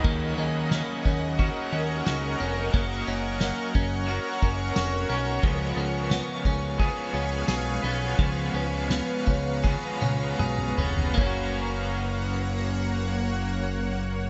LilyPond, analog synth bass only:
\new Staff \with { instrumentName = "Analog synth bass" } { \clef bass \time 4/4 \key fis \major \tempo 4 = 88 dis,8 dis,8. r16 dis,8. r16 dis,8 cis,8 eis,,8 | fis,,8 fis,,8. r16 fis,,8. r16 fis,,8 eis,,8 b,,8 | cis,8 cis,8. r16 cis,8. r16 cis,8 b,,8 b,,8 | cis,8 cis,8. r16 cis,8. r16 cis,8 b,,8 eis,,8 |
fis,,1 | }